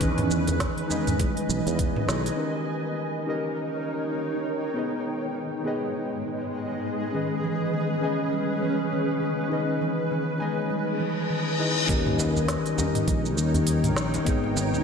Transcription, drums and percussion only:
0.01 kick loud
0.01 open hi-hat medium
0.01 shaker soft
0.18 mid tom medium
0.18 open hi-hat soft
0.18 djembe slap medium
0.31 djembe tone soft
0.31 shaker medium
0.47 open hi-hat soft
0.47 djembe slap soft
0.47 djembe tone medium
0.47 djembe bass medium
0.47 shaker soft
0.60 kick loud
0.60 snare medium
0.60 open hi-hat medium
0.60 shaker soft
0.78 open hi-hat soft
0.90 djembe tone medium
0.90 shaker medium
1.07 mid tom medium
1.07 open hi-hat soft
1.07 djembe slap medium
1.07 djembe bass medium
1.07 shaker soft
1.20 kick loud
1.20 open hi-hat medium
1.20 shaker soft
1.37 open hi-hat soft
1.50 shaker medium
1.67 open hi-hat soft
1.67 djembe tone soft
1.67 shaker soft
1.79 kick loud
1.79 open hi-hat medium
1.79 shaker soft
1.96 mid tom medium
1.96 djembe tone medium
2.09 snare medium
2.09 shaker medium
2.26 open hi-hat soft
2.26 shaker soft
11.89 kick loud
11.89 open hi-hat medium
11.89 shaker soft
12.06 mid tom medium
12.06 djembe slap soft
12.19 djembe slap medium
12.19 shaker medium
12.36 djembe tone medium
12.36 shaker soft
12.48 snare medium
12.48 open hi-hat medium
12.48 shaker soft
12.66 open hi-hat soft
12.66 shaker soft
12.78 djembe slap medium
12.78 djembe tone medium
12.78 djembe bass medium
12.78 shaker medium
12.95 mid tom medium
12.95 open hi-hat soft
12.95 shaker soft
13.08 kick loud
13.08 open hi-hat medium
13.08 shaker soft
13.26 shaker soft
13.38 shaker medium
13.54 open hi-hat soft
13.54 djembe bass medium
13.54 shaker soft
13.67 open hi-hat medium
13.67 shaker soft
13.83 mid tom medium
13.83 open hi-hat soft
13.83 djembe tone medium
13.83 shaker soft
13.96 snare medium
13.96 shaker medium
14.14 open hi-hat soft
14.14 djembe slap medium
14.14 shaker soft
14.26 kick loud
14.26 open hi-hat medium
14.26 shaker soft
14.44 djembe slap soft
14.56 djembe slap medium
14.56 djembe tone soft
14.56 shaker medium
14.74 mid tom medium
14.74 djembe tone medium
14.74 shaker soft

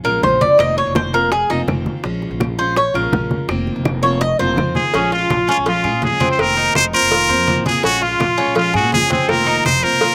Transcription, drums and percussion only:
0.05 high conga soft
0.05 claves medium
0.23 high bongo soft
0.23 low bongo medium
0.23 high conga medium
0.41 high bongo soft
0.41 high conga medium
0.59 high bongo medium
0.59 high conga soft
0.59 claves medium
0.77 high bongo soft
0.77 high conga soft
0.95 high bongo medium
0.95 high conga loud
0.95 claves medium
1.13 high bongo soft
1.13 high conga soft
1.32 high bongo medium
1.32 high conga soft
1.50 high conga soft
1.68 high bongo soft
1.68 low bongo medium
1.68 high conga medium
1.68 claves medium
1.86 high bongo soft
1.86 high conga medium
2.04 high bongo medium
2.04 high conga soft
2.22 high bongo soft
2.22 high conga soft
2.40 high bongo medium
2.40 high conga medium
2.40 claves medium
2.59 high bongo soft
2.59 high conga soft
2.76 high bongo medium
2.76 high conga soft
2.94 high conga soft
2.94 claves medium
3.13 high bongo soft
3.13 low bongo medium
3.13 high conga medium
3.31 high bongo soft
3.31 high conga medium
3.49 high bongo medium
3.49 high conga soft
3.49 claves medium
3.67 high bongo soft
3.67 high conga soft
3.85 high bongo medium
3.85 high conga loud
3.85 claves medium
4.03 high bongo soft
4.03 high conga soft
4.21 high bongo medium
4.21 high conga soft
4.39 high conga soft
4.57 high bongo soft
4.57 low bongo medium
4.57 high conga medium
4.57 claves medium
4.75 high bongo soft
4.75 high conga medium
4.94 cowbell loud
4.94 high conga soft
5.12 high conga soft
5.30 cowbell medium
5.30 high conga loud
5.30 claves medium
5.48 cowbell medium
5.48 high conga soft
5.66 cowbell loud
5.66 high conga soft
5.84 high conga soft
5.84 claves medium
6.02 cowbell medium
6.02 high conga medium
6.21 cowbell medium
6.21 high conga medium
6.39 cowbell loud
6.39 high conga soft
6.39 claves medium
6.57 high conga soft
6.75 cowbell medium
6.75 high conga loud
6.75 claves medium
6.94 high conga soft
7.12 cowbell loud
7.12 high conga soft
7.30 high conga soft
7.47 cowbell medium
7.47 high conga medium
7.47 claves medium
7.66 cowbell medium
7.66 high conga medium
7.84 cowbell loud
7.84 high conga soft
8.02 high conga soft
8.20 cowbell medium
8.20 high conga loud
8.20 claves medium
8.38 cowbell medium
8.38 high conga soft
8.56 cowbell loud
8.56 high conga soft
8.74 high conga soft
8.74 claves medium
8.92 cowbell medium
8.92 high conga medium
9.11 cowbell medium
9.11 high conga medium
9.29 cowbell loud
9.29 high conga soft
9.29 claves medium
9.48 high conga soft
9.65 cowbell medium
9.65 high conga medium
9.65 claves medium
9.84 high conga soft
10.01 cowbell loud
10.01 high conga soft

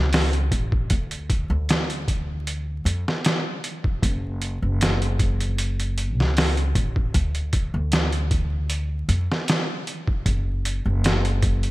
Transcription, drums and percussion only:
0.13 snare loud
0.13 open hi-hat medium
0.33 closed hi-hat soft
0.52 kick medium
0.52 closed hi-hat medium
0.72 kick medium
0.90 kick loud
0.90 closed hi-hat medium
1.11 closed hi-hat soft
1.30 kick medium
1.30 closed hi-hat medium
1.69 snare loud
1.69 closed hi-hat medium
1.90 closed hi-hat soft
2.08 kick medium
2.08 closed hi-hat medium
2.47 closed hi-hat medium
2.86 closed hi-hat medium
3.08 snare medium
3.25 snare loud
3.25 closed hi-hat medium
3.64 closed hi-hat medium
3.84 kick medium
4.03 kick loud
4.03 closed hi-hat medium
4.42 closed hi-hat medium
4.81 snare loud
4.81 closed hi-hat medium
5.02 closed hi-hat soft
5.19 kick medium
5.19 closed hi-hat medium
5.40 closed hi-hat soft
5.58 closed hi-hat medium
5.80 closed hi-hat soft
5.98 closed hi-hat medium
6.20 snare soft
6.37 snare loud
6.37 open hi-hat medium
6.57 closed hi-hat soft
6.75 kick loud
6.75 closed hi-hat medium
6.96 kick medium
7.14 kick loud
7.14 closed hi-hat medium
7.35 closed hi-hat soft
7.53 kick medium
7.53 closed hi-hat medium
7.92 snare loud
7.92 closed hi-hat medium
8.12 closed hi-hat soft
8.31 kick medium
8.31 closed hi-hat medium
8.70 closed hi-hat medium
9.09 closed hi-hat medium
9.32 snare soft
9.48 snare loud
9.48 closed hi-hat medium
9.87 closed hi-hat medium
10.07 kick medium
10.26 kick loud
10.26 closed hi-hat medium
10.65 closed hi-hat medium
11.04 snare loud
11.04 closed hi-hat medium
11.25 closed hi-hat soft
11.42 kick loud
11.42 closed hi-hat medium
11.63 closed hi-hat soft

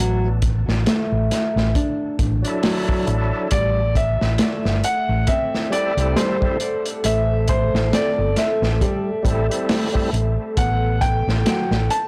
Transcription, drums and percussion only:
0.42 kick medium
0.42 closed hi-hat medium
0.69 snare soft
0.86 snare loud
0.86 closed hi-hat medium
1.31 snare soft
1.31 closed hi-hat medium
1.57 snare soft
1.75 kick loud
1.75 closed hi-hat medium
2.19 kick loud
2.19 closed hi-hat medium
2.45 closed hi-hat soft
2.63 snare loud
2.63 open hi-hat medium
2.89 kick medium
3.07 closed hi-hat medium
3.51 kick loud
3.51 closed hi-hat medium
3.95 kick medium
3.95 closed hi-hat medium
4.21 snare soft
4.38 snare loud
4.38 closed hi-hat medium
4.65 snare soft
4.84 closed hi-hat medium
5.27 kick loud
5.27 closed hi-hat medium
5.54 snare soft
5.73 closed hi-hat medium
5.98 closed hi-hat soft
6.17 snare loud
6.17 closed hi-hat medium
6.42 kick medium
6.60 closed hi-hat medium
6.86 closed hi-hat soft
7.04 closed hi-hat medium
7.48 kick medium
7.48 closed hi-hat medium
7.75 snare soft
7.93 snare loud
7.93 closed hi-hat medium
8.36 snare soft
8.36 closed hi-hat medium
8.63 snare soft
8.81 kick loud
8.81 closed hi-hat medium
9.25 kick medium
9.25 closed hi-hat medium
9.51 closed hi-hat soft
9.69 snare loud
9.69 open hi-hat medium
9.95 kick medium
10.14 closed hi-hat medium
10.57 kick loud
10.57 closed hi-hat medium
11.02 kick medium
11.02 closed hi-hat medium
11.29 snare soft
11.46 snare loud
11.46 closed hi-hat medium
11.71 snare medium
11.90 closed hi-hat medium

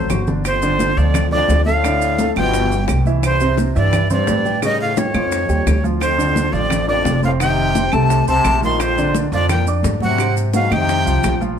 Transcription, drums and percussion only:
0.10 high bongo medium
0.10 low bongo medium
0.10 low conga medium
0.10 claves medium
0.10 maracas medium
0.27 high bongo soft
0.27 low conga medium
0.27 maracas soft
0.45 high bongo medium
0.45 high conga soft
0.45 claves medium
0.45 maracas medium
0.62 high bongo soft
0.62 high conga soft
0.62 maracas medium
0.79 high bongo medium
0.79 high conga medium
0.79 maracas medium
0.96 high bongo soft
0.96 high conga soft
0.96 maracas soft
1.14 high bongo medium
1.14 high conga soft
1.14 low conga medium
1.14 claves medium
1.14 maracas medium
1.31 high bongo soft
1.31 high conga soft
1.31 low conga medium
1.48 high bongo medium
1.48 low bongo medium
1.48 high conga medium
1.48 maracas medium
1.66 high conga medium
1.66 maracas soft
1.84 high bongo medium
1.84 high conga soft
1.84 claves medium
1.84 maracas medium
2.02 high bongo soft
2.02 high conga soft
2.02 maracas medium
2.19 high bongo medium
2.19 high conga medium
2.19 maracas medium
2.36 high conga medium
2.36 claves medium
2.36 maracas soft
2.54 high bongo medium
2.54 high conga soft
2.54 maracas medium
2.71 high bongo soft
2.71 high conga soft
2.71 maracas medium
2.88 high bongo medium
2.88 low bongo medium
2.88 high conga medium
2.88 claves medium
2.88 maracas medium
3.05 high bongo soft
3.05 high conga medium
3.05 maracas soft
3.23 high bongo medium
3.23 high conga soft
3.23 claves medium
3.23 maracas medium
3.40 high bongo soft
3.40 high conga soft
3.40 maracas medium
3.58 high bongo medium
3.58 high conga loud
3.58 maracas medium
3.75 high bongo soft
3.75 high conga soft
3.75 maracas soft
3.93 high bongo medium
3.93 high conga soft
3.93 low conga medium
3.93 claves medium
3.93 maracas medium
4.10 high bongo soft
4.10 high conga soft
4.10 low conga medium
4.10 maracas medium
4.27 high bongo medium
4.27 low bongo medium
4.27 high conga medium
4.27 maracas medium
4.45 high conga medium
4.45 maracas soft
4.62 high bongo medium
4.62 high conga soft
4.62 claves medium
4.62 maracas medium
4.80 high bongo soft
4.80 high conga soft
4.97 high bongo medium
4.97 high conga medium
4.97 maracas medium
5.14 high conga loud
5.14 claves medium
5.14 maracas soft
5.32 high bongo medium
5.32 high conga soft
5.32 maracas medium
5.49 high bongo soft
5.49 high conga soft
5.49 maracas medium
5.67 high bongo medium
5.67 low bongo medium
5.67 high conga medium
5.67 claves medium
5.67 maracas medium
5.84 high bongo soft
5.84 high conga medium
5.84 maracas soft
6.01 high bongo medium
6.01 high conga soft
6.01 claves medium
6.01 maracas medium
6.19 high bongo soft
6.19 high conga soft
6.19 maracas medium
6.36 high bongo medium
6.36 high conga medium
6.36 maracas medium
6.53 high bongo soft
6.53 high conga soft
6.53 maracas soft
6.70 high bongo medium
6.70 high conga soft
6.70 low conga medium
6.70 claves medium
6.70 maracas medium
6.88 high bongo soft
6.88 high conga soft
7.05 high bongo medium
7.05 low bongo medium
7.05 high conga medium
7.05 maracas medium
7.23 high conga medium
7.23 maracas soft
7.40 high bongo medium
7.40 high conga soft
7.40 claves medium
7.40 maracas medium
7.58 high bongo soft
7.58 high conga soft
7.75 high bongo medium
7.75 high conga medium
7.75 maracas medium
7.92 high conga medium
7.92 claves medium
7.92 maracas soft
8.09 high bongo medium
8.09 high conga soft
8.09 maracas medium
8.27 high bongo soft
8.27 high conga soft
8.27 maracas medium
8.44 high bongo medium
8.44 low bongo medium
8.44 high conga medium
8.44 claves medium
8.44 maracas medium
8.62 high bongo soft
8.62 high conga medium
8.62 maracas soft
8.80 high bongo medium
8.80 high conga soft
8.80 claves medium
8.80 maracas medium
8.97 high bongo soft
8.97 high conga soft
8.97 maracas medium
9.14 high bongo medium
9.14 high conga loud
9.14 maracas medium
9.32 high bongo soft
9.32 high conga soft
9.32 maracas soft
9.49 high bongo medium
9.49 high conga soft
9.49 low conga medium
9.49 claves medium
9.49 maracas medium
9.66 high bongo soft
9.66 high conga soft
9.66 maracas medium
9.83 high bongo medium
9.83 low bongo medium
9.83 high conga medium
9.83 maracas medium
10.00 high conga medium
10.00 maracas soft
10.18 high bongo medium
10.18 high conga soft
10.18 claves medium
10.18 maracas medium
10.36 high bongo soft
10.36 high conga soft
10.36 maracas medium
10.53 high bongo medium
10.53 high conga medium
10.53 maracas medium
10.72 high conga medium
10.72 claves medium
10.72 maracas soft
10.89 high bongo medium
10.89 high conga soft
10.89 maracas medium
11.06 high bongo soft
11.06 high conga soft
11.06 maracas medium
11.23 high bongo medium
11.23 low bongo medium
11.23 high conga medium
11.23 claves medium
11.23 maracas medium
11.41 high bongo soft
11.41 high conga medium
11.41 maracas soft

